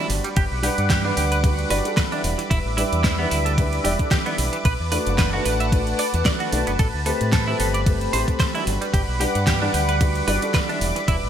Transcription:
Already playing: grand piano G3 D4, analog synth pad B5
0.00 grand piano F#4 D5
0.10 fingered electric bass G1, analog synth pad B4 F#5 D6, open hi-hat
0.24 clean electric guitar G3, closed hi-hat
0.36 fingered electric bass G1, clean electric guitar G4, kick, closed hi-hat, ride
0.51 fingered electric bass B1
0.63 grand piano G3 D4 B4 F#5, clean electric guitar G4, open hi-hat
0.78 fingered electric bass G2, closed hi-hat
0.90 clean electric guitar G4, kick, snare, closed hi-hat, ride
1.04 grand piano G3 D4 B4 F#5, clean electric guitar D4
1.17 fingered electric bass D2, clean electric guitar G4, open hi-hat
1.32 clean electric guitar B4, closed hi-hat
1.43 grand piano G3 D4 F#4 B4, kick, closed hi-hat, ride
1.59 closed hi-hat
1.70 fingered electric bass G1, grand piano G3 D4 F#4 D5, clean electric guitar B4, open hi-hat
1.85 grand piano G3 D4 F#4 A4, closed hi-hat
1.97 clean electric guitar B4, kick, snare, closed hi-hat, ride
2.11 grand piano G3 D4 E4 D5, clean electric guitar D4, closed hi-hat
2.24 fingered electric bass E1, analog synth pad E5 D6, open hi-hat
2.38 clean electric guitar E3, closed hi-hat
2.50 fingered electric bass E1, clean electric guitar E4, kick, closed hi-hat, ride
2.66 fingered electric bass A1
2.77 grand piano G3 D4 E4 B4, clean electric guitar E4, open hi-hat
2.92 fingered electric bass E2, closed hi-hat
3.04 clean electric guitar E4, kick, snare, closed hi-hat, ride
3.19 grand piano G3 D4 E4 B4, clean electric guitar B3
3.31 fingered electric bass D2, clean electric guitar E4, open hi-hat
3.45 clean electric guitar A4, closed hi-hat
3.58 grand piano G3 D4 E4 B4, kick, closed hi-hat, ride
3.73 closed hi-hat
3.84 fingered electric bass E1, grand piano G3 D4 E4 D5, clean electric guitar G4, open hi-hat
3.99 grand piano G3 D4 E4 A4, kick, closed hi-hat
4.11 clean electric guitar G4, kick, snare, closed hi-hat, ride
4.26 grand piano G3 D4 E4 D5, clean electric guitar B3, closed hi-hat
4.38 fingered electric bass B1, open hi-hat
4.53 clean electric guitar E3, closed hi-hat
4.65 fingered electric bass B1, clean electric guitar B4, analog synth pad F#5 A5, kick, closed hi-hat, ride
4.80 fingered electric bass E2
4.91 grand piano A3 D4 F#4 B4, clean electric guitar B4, open hi-hat
5.07 fingered electric bass F#1, closed hi-hat
5.18 clean electric guitar B4, kick, snare, closed hi-hat, ride
5.33 grand piano A3 D4 F#4 B4, clean electric guitar F#4
5.45 fingered electric bass A1, clean electric guitar B4, open hi-hat
5.60 clean electric guitar E5, closed hi-hat
5.72 grand piano A3 D4 F#4 B4, kick, closed hi-hat, ride
5.87 closed hi-hat
5.99 clean electric guitar D5, open hi-hat
6.14 fingered electric bass E2, closed hi-hat
6.25 grand piano A3 D4 F#4 B4, clean electric guitar D5, kick, snare, closed hi-hat, ride
6.40 clean electric guitar F#4, closed hi-hat
6.52 fingered electric bass B1, grand piano A3 D4 F#4 B4, open hi-hat
6.67 fingered electric bass F#1, clean electric guitar B3, closed hi-hat
6.79 fingered electric bass A1, clean electric guitar A4, analog synth pad B5, kick, closed hi-hat, ride
6.94 fingered electric bass D2
7.06 grand piano A3 C4 G4 B4, clean electric guitar A4, open hi-hat
7.21 fingered electric bass A2, closed hi-hat
7.32 clean electric guitar A4, kick, snare, closed hi-hat, ride
7.47 grand piano A3 C4 G4 B4, clean electric guitar E4
7.60 fingered electric bass G1, clean electric guitar A4, open hi-hat
7.74 clean electric guitar D5, closed hi-hat
7.86 grand piano A3 C4 G4 B4, kick, closed hi-hat, ride
8.01 closed hi-hat
8.13 fingered electric bass A1, grand piano A3 C4 G4 C5, clean electric guitar C5, open hi-hat
8.27 grand piano A3 C4 A4, kick, closed hi-hat
8.40 clean electric guitar C5, kick, snare, closed hi-hat, ride
8.54 grand piano G3 D4 F#4 D5, clean electric guitar E4, closed hi-hat
8.67 fingered electric bass G1, analog synth pad F#5 D6, open hi-hat
8.81 clean electric guitar G3, closed hi-hat
8.93 fingered electric bass G1, clean electric guitar G4, kick, closed hi-hat, ride
9.08 fingered electric bass B1
9.20 grand piano G3 D4 B4 F#5, clean electric guitar G4, open hi-hat
9.35 fingered electric bass G2, closed hi-hat
9.47 clean electric guitar G4, kick, snare, closed hi-hat, ride
9.62 grand piano G3 D4 B4 F#5, clean electric guitar D4
9.74 fingered electric bass D2, clean electric guitar G4, open hi-hat
9.89 clean electric guitar B4, closed hi-hat
10.01 grand piano G3 D4 F#4 B4, kick, closed hi-hat, ride
10.15 closed hi-hat
10.28 fingered electric bass G1, grand piano G3 D4 F#4 D5, clean electric guitar B4, open hi-hat
10.42 grand piano G3 D4 F#4 A4, closed hi-hat
10.54 clean electric guitar B4, kick, snare, closed hi-hat, ride
10.68 grand piano G3 D4 E4 D5, clean electric guitar D4, closed hi-hat
10.81 fingered electric bass E1, analog synth pad B4 E5, open hi-hat
10.96 clean electric guitar E3, closed hi-hat
11.08 fingered electric bass E1, clean electric guitar E4, kick, closed hi-hat, ride
11.23 fingered electric bass A1

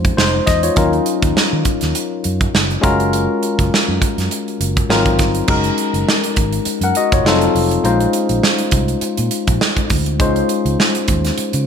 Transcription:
Already playing: tine electric piano G#3 C#4 D#4 F4 C5
0.05 kick, closed hi-hat
0.17 fingered electric bass F1, tine electric piano D#4 C5, snare
0.47 fingered electric bass E2, tine electric piano D#5, kick, snare, closed hi-hat
0.63 tine electric piano F4 C#5, closed hi-hat
0.75 fingered electric bass D#2, tine electric piano F#3 C#4 D#4 F4 A#4, kick, closed hi-hat
0.93 closed hi-hat
1.06 closed hi-hat
1.22 fingered electric bass D#2, kick, closed hi-hat
1.36 muted fingered electric bass stroke, snare
1.53 fingered electric bass D#3
1.65 kick, closed hi-hat
1.81 fingered electric bass D#2, snare, closed hi-hat
1.95 closed hi-hat
2.24 fingered electric bass F#2, closed hi-hat
2.41 kick, closed hi-hat
2.55 fingered electric bass F#1, snare
2.70 closed hi-hat
2.81 fingered electric bass F#1, tine electric piano G#3 C#4 F4 F#4 A#4, kick, closed hi-hat
3.00 closed hi-hat
3.13 closed hi-hat
3.43 closed hi-hat
3.59 fingered electric bass F#1, kick, closed hi-hat
3.74 snare
3.88 fingered electric bass F#2
4.02 kick, closed hi-hat
4.18 fingered electric bass F#2, snare, closed hi-hat
4.31 closed hi-hat
4.48 closed hi-hat
4.60 fingered electric bass F#1, closed hi-hat
4.77 kick, closed hi-hat
4.89 fingered electric bass G#1, tine electric piano F#3 C4 D#4 F4 A#4, snare
5.06 kick, closed hi-hat
5.19 fingered electric bass G1, kick, snare, closed hi-hat
5.35 closed hi-hat
5.48 fingered electric bass F#1, tine electric piano G#3 C#4 D#4 F#4 A#4, kick, crash
5.64 closed hi-hat
5.78 closed hi-hat
5.94 fingered electric bass F#1, closed hi-hat
6.09 snare
6.24 closed hi-hat
6.36 fingered electric bass G#1, kick, closed hi-hat
6.53 closed hi-hat
6.65 muted fingered electric bass stroke, closed hi-hat
6.81 fingered electric bass F#2, tine electric piano A#4 F#5, closed hi-hat
6.95 tine electric piano F#4 D#5, closed hi-hat
7.12 fingered electric bass F#1, tine electric piano F4 C#5, kick, closed hi-hat
7.25 fingered electric bass F1, tine electric piano F#3 C4 D#4 F4 A4, snare
7.41 closed hi-hat
7.55 fingered electric bass F1, open hi-hat
7.71 closed hi-hat
7.83 fingered electric bass A#1, tine electric piano G#3 C#4 D#4 F4 C5, closed hi-hat
8.00 closed hi-hat
8.13 closed hi-hat
8.29 fingered electric bass A#1, closed hi-hat
8.43 snare
8.59 closed hi-hat
8.71 fingered electric bass C2, kick, closed hi-hat
8.88 closed hi-hat
9.01 muted fingered electric bass stroke, closed hi-hat
9.17 fingered electric bass A#2, closed hi-hat
9.31 closed hi-hat
9.47 fingered electric bass A#1, kick, closed hi-hat
9.61 snare
9.77 kick, closed hi-hat
9.90 fingered electric bass D2, kick, open hi-hat
10.06 closed hi-hat
10.19 fingered electric bass C#2, tine electric piano G#3 C#4 D#4 F4 C5, kick, closed hi-hat
10.36 closed hi-hat
10.49 closed hi-hat
10.65 fingered electric bass C#2, closed hi-hat
10.80 snare
10.95 closed hi-hat
11.08 fingered electric bass D#2, kick, closed hi-hat
11.25 snare, closed hi-hat
11.38 muted fingered electric bass stroke, closed hi-hat
11.53 fingered electric bass C#3, closed hi-hat

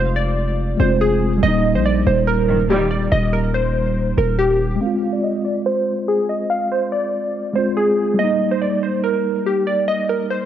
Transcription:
Already playing: 808-style bass F1, tine electric piano G#3 C4 F4, synth keys C5
0.16 synth keys D5
0.77 808-style bass F1, tine electric piano G#3 C4, synth keys C5
0.82 tine electric piano F4
1.01 synth keys G#4
1.38 tine electric piano G3
1.43 808-style bass D#1, tine electric piano A#3, synth keys D#5
1.48 tine electric piano D#4
1.75 808-style bass A#1, synth keys C5
1.85 synth keys D5
2.07 808-style bass D#1, synth keys C5
2.27 synth keys A#4
2.49 string section G2 A#2 D#3
2.70 string section A#2 D#3 G3, synth keys G4
2.91 synth keys D5
3.12 808-style bass D#1, synth keys D#5
3.33 synth keys A#4
3.54 synth keys C5
4.18 808-style bass D#1, synth keys A#4
4.39 synth keys G4
4.76 tine electric piano G#3
4.81 tine electric piano C4, synth keys F5
4.86 tine electric piano F4
5.13 synth keys D5
5.23 synth keys D#5
5.45 synth keys D5
5.66 synth keys C5
6.08 synth keys G#4
6.29 synth keys D#5
6.50 synth keys F5
6.72 synth keys C5
6.92 synth keys D5
7.53 tine electric piano G#3 C4, synth keys C5
7.58 tine electric piano F4
7.77 synth keys G#4
8.14 tine electric piano G3
8.19 tine electric piano A#3, synth keys D#5
8.24 tine electric piano D#4
8.51 synth keys C5
8.62 synth keys D5
8.83 synth keys C5
9.04 synth keys A#4
9.46 synth keys G4
9.67 synth keys D5
9.88 synth keys D#5
10.09 synth keys A#4
10.30 synth keys C5

